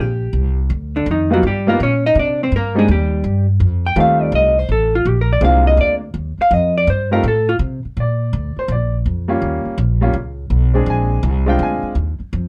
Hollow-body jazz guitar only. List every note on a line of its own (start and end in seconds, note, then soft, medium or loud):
0.01 0.59 G4 medium
0.96 1.07 D3 medium
0.96 1.07 D4 medium
1.11 1.32 D#3 medium
1.11 1.32 D#4 medium
1.34 1.44 F#3 medium
1.34 1.44 F#4 medium
1.47 1.68 G3 medium
1.47 1.68 G4 medium
1.69 1.80 A#3 medium
1.69 1.80 A#4 medium
1.83 2.05 C#4 medium
1.83 2.04 C#5 medium
2.06 2.17 D#4 medium
2.06 2.17 D#5 loud
2.19 2.41 D4 medium
2.19 2.41 D5 medium
2.43 2.53 C4 medium
2.43 2.53 C5 medium
2.56 2.77 A#3 medium
2.56 2.77 A#4 medium
2.79 2.89 G#3 medium
2.79 2.89 G#4 medium
2.91 3.46 G3 medium
2.91 3.46 G4 medium
3.86 3.97 G5 medium
4.00 4.23 F5 medium
4.23 4.34 D5 medium
4.35 4.59 D#5 medium
4.59 4.70 C5 medium
4.72 4.94 A4 medium
4.95 5.09 F4 medium
5.09 5.19 G4 medium
5.21 5.31 A#4 medium
5.33 5.43 D5 medium
5.45 5.67 F5 loud
5.67 5.79 D#5 medium
5.81 5.94 D5 loud
6.42 6.54 F5 loud
6.54 6.75 D#5 medium
6.78 6.88 D5 medium
6.90 7.12 C5 medium
7.13 7.24 A#4 medium
7.28 7.49 A4 medium
7.49 7.56 F4 medium